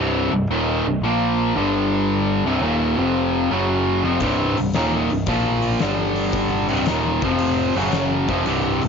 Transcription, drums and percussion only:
4.20 kick, open hi-hat
4.57 open hi-hat
4.74 snare, open hi-hat
5.10 open hi-hat
5.26 kick, open hi-hat
5.62 open hi-hat
5.79 snare, open hi-hat
6.16 open hi-hat
6.32 kick, open hi-hat
6.69 open hi-hat
6.86 snare, open hi-hat
7.22 kick, open hi-hat
7.39 open hi-hat
7.75 open hi-hat
7.92 snare, open hi-hat
8.28 kick, open hi-hat
8.46 open hi-hat
8.82 open hi-hat

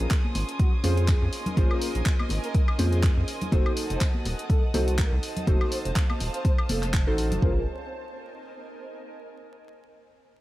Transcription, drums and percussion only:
0.11 kick, clap, closed hi-hat
0.24 high conga
0.35 open hi-hat, muted conga
0.49 closed hi-hat
0.59 kick, closed hi-hat
0.84 open hi-hat, muted conga, high conga
0.97 closed hi-hat
1.08 kick, clap, closed hi-hat
1.33 open hi-hat
1.46 closed hi-hat, low conga
1.57 kick, closed hi-hat, high conga
1.71 high woodblock
1.81 open hi-hat
1.95 closed hi-hat
2.06 kick, clap, closed hi-hat
2.19 high conga, high woodblock
2.29 open hi-hat, muted conga
2.44 closed hi-hat
2.55 kick, closed hi-hat
2.68 high woodblock
2.79 open hi-hat, high conga
2.93 closed hi-hat
3.03 kick, clap, closed hi-hat
3.28 open hi-hat
3.41 closed hi-hat, low conga
3.52 kick, closed hi-hat, high conga
3.66 high woodblock
3.77 open hi-hat
3.90 closed hi-hat
4.01 kick, clap, closed hi-hat
4.14 high conga
4.25 open hi-hat, muted conga
4.39 closed hi-hat
4.50 kick, closed hi-hat
4.74 open hi-hat, muted conga, high conga
4.88 closed hi-hat
4.98 kick, clap, closed hi-hat
5.23 open hi-hat
5.37 closed hi-hat, low conga
5.47 kick, closed hi-hat, high conga
5.61 high woodblock
5.72 open hi-hat
5.85 closed hi-hat
5.95 kick, clap, closed hi-hat, muted conga
6.10 high conga, high woodblock
6.20 open hi-hat, muted conga
6.34 closed hi-hat
6.45 kick, closed hi-hat, muted conga
6.58 high woodblock
6.69 open hi-hat, high conga
6.83 clap, closed hi-hat
6.94 kick, clap, closed hi-hat
7.18 open hi-hat
7.32 closed hi-hat, low conga
7.42 kick, floor tom

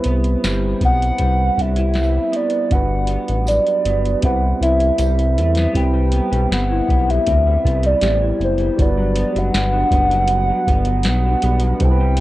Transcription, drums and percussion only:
0.04 closed hi-hat
0.24 closed hi-hat
0.44 snare, closed hi-hat, tambourine
0.81 kick, closed hi-hat
1.02 closed hi-hat
1.19 kick, closed hi-hat
1.58 kick, closed hi-hat
1.76 closed hi-hat
1.94 snare, closed hi-hat, tambourine
2.33 closed hi-hat
2.50 closed hi-hat
2.71 kick, closed hi-hat
3.07 closed hi-hat
3.28 closed hi-hat
3.46 closed hi-hat, tambourine
3.66 closed hi-hat
3.85 closed hi-hat
4.05 closed hi-hat
4.22 kick, closed hi-hat
4.63 closed hi-hat
4.80 closed hi-hat
4.98 closed hi-hat, tambourine
5.19 closed hi-hat
5.38 closed hi-hat
5.55 snare, closed hi-hat
5.75 kick, closed hi-hat
6.12 closed hi-hat
6.33 closed hi-hat
6.52 snare, closed hi-hat
6.88 kick, closed hi-hat
7.10 closed hi-hat
7.26 kick, closed hi-hat
7.65 kick, closed hi-hat
7.83 closed hi-hat
8.02 snare, closed hi-hat
8.41 closed hi-hat
8.58 closed hi-hat
8.79 kick, closed hi-hat
9.15 closed hi-hat
9.36 closed hi-hat
9.54 snare, closed hi-hat
9.91 kick, closed hi-hat
10.11 closed hi-hat
10.28 closed hi-hat
10.67 kick, closed hi-hat
10.85 closed hi-hat
11.03 snare, closed hi-hat
11.42 closed hi-hat
11.60 closed hi-hat
11.80 kick, closed hi-hat
12.17 closed hi-hat

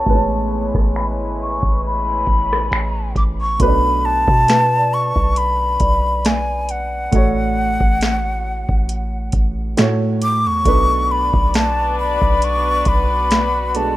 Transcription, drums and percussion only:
0.06 kick, closed hi-hat
0.74 kick, cross-stick
0.95 finger snap, closed hi-hat
1.63 kick
1.83 closed hi-hat
2.27 kick, closed hi-hat
2.53 cross-stick
2.72 finger snap, closed hi-hat
3.16 kick, closed hi-hat
3.60 kick, closed hi-hat
4.28 kick
4.48 snare, closed hi-hat
5.16 kick
5.36 closed hi-hat
5.80 kick, closed hi-hat
6.25 snare, closed hi-hat
6.69 closed hi-hat
7.12 kick, closed hi-hat
7.81 kick
8.01 snare, closed hi-hat
8.69 kick
8.89 closed hi-hat
9.32 kick, closed hi-hat
9.77 snare, closed hi-hat
10.22 closed hi-hat
10.65 kick, closed hi-hat
11.33 kick
11.54 snare, closed hi-hat
12.22 kick
12.42 closed hi-hat
12.85 kick, closed hi-hat
13.31 snare, closed hi-hat
13.75 closed hi-hat

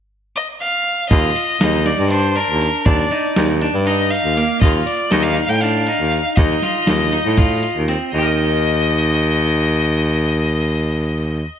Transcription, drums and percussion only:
1.11 kick, closed hi-hat
1.36 closed hi-hat
1.61 snare, closed hi-hat
1.86 snare, closed hi-hat
2.10 closed hi-hat
2.36 closed hi-hat
2.61 closed hi-hat
2.86 kick, closed hi-hat
3.11 closed hi-hat
3.36 snare, closed hi-hat
3.61 closed hi-hat
3.87 closed hi-hat
4.12 closed hi-hat
4.37 closed hi-hat
4.62 kick, closed hi-hat
4.87 closed hi-hat
5.12 snare, closed hi-hat
5.37 closed hi-hat
5.62 closed hi-hat
5.87 closed hi-hat
6.12 closed hi-hat
6.37 kick, closed hi-hat
6.62 snare, closed hi-hat
6.87 snare, closed hi-hat
7.13 closed hi-hat
7.37 kick, closed hi-hat
7.63 closed hi-hat
7.88 closed hi-hat

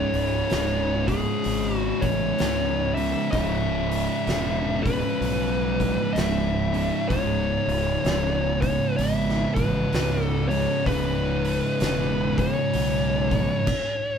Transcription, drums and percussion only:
0.14 open hi-hat
0.50 snare, open hi-hat
1.08 kick, open hi-hat
1.44 open hi-hat
2.02 kick, open hi-hat
2.38 snare, open hi-hat
2.97 open hi-hat
3.33 kick, open hi-hat
3.92 open hi-hat
4.27 snare, open hi-hat
4.86 kick, open hi-hat
5.22 open hi-hat
5.80 kick, open hi-hat
6.16 snare, open hi-hat
6.74 open hi-hat
7.10 kick, open hi-hat
7.69 open hi-hat
8.05 snare, open hi-hat
8.62 kick, open hi-hat
8.99 open hi-hat
9.29 snare
9.56 kick, open hi-hat
9.93 snare, open hi-hat
10.51 open hi-hat
10.86 kick, open hi-hat
11.45 open hi-hat
11.80 snare, open hi-hat
12.38 kick, open hi-hat
12.74 open hi-hat
13.31 kick, open hi-hat
13.67 kick, crash

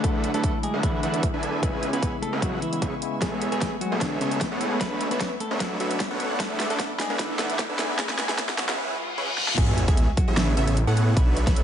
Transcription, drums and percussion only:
0.04 kick, closed hi-hat
0.24 closed hi-hat
0.34 closed hi-hat
0.44 kick, closed hi-hat
0.63 closed hi-hat
0.83 kick, closed hi-hat
1.03 closed hi-hat
1.14 closed hi-hat
1.23 kick, closed hi-hat
1.43 closed hi-hat
1.63 kick, closed hi-hat
1.83 closed hi-hat
1.93 closed hi-hat
2.03 kick, closed hi-hat
2.23 closed hi-hat
2.42 kick, closed hi-hat
2.62 closed hi-hat
2.73 closed hi-hat
2.82 kick, closed hi-hat
3.02 closed hi-hat
3.22 kick, snare, closed hi-hat
3.42 closed hi-hat
3.52 closed hi-hat
3.61 kick, snare, closed hi-hat
3.81 closed hi-hat
4.01 kick, snare, closed hi-hat
4.21 closed hi-hat
4.31 closed hi-hat
4.41 kick, snare, closed hi-hat
4.61 closed hi-hat
4.81 kick, snare, closed hi-hat
5.01 closed hi-hat
5.11 closed hi-hat
5.21 kick, snare, closed hi-hat
5.40 closed hi-hat
5.60 kick, snare, closed hi-hat
5.80 closed hi-hat
5.91 closed hi-hat
6.00 kick, snare, closed hi-hat
6.20 closed hi-hat
6.40 kick, snare, closed hi-hat
6.60 snare, closed hi-hat
6.70 closed hi-hat
6.80 kick, snare, closed hi-hat
6.99 snare, closed hi-hat
7.19 kick, snare, closed hi-hat
7.39 snare, closed hi-hat
7.50 closed hi-hat
7.59 kick, snare, closed hi-hat
7.79 snare, closed hi-hat
7.99 kick, snare, closed hi-hat
8.09 snare
8.19 snare, closed hi-hat
8.29 snare, closed hi-hat
8.38 kick, snare, closed hi-hat
8.49 snare
8.58 snare, closed hi-hat
8.69 snare
9.38 snare
9.48 snare
9.58 kick, closed hi-hat, crash
9.78 closed hi-hat
9.88 kick, closed hi-hat
9.97 closed hi-hat
10.17 kick, closed hi-hat
10.37 snare, closed hi-hat
10.57 closed hi-hat
10.68 closed hi-hat
10.77 closed hi-hat
10.97 closed hi-hat
11.17 kick, closed hi-hat
11.37 closed hi-hat
11.47 kick, snare, closed hi-hat
11.56 closed hi-hat

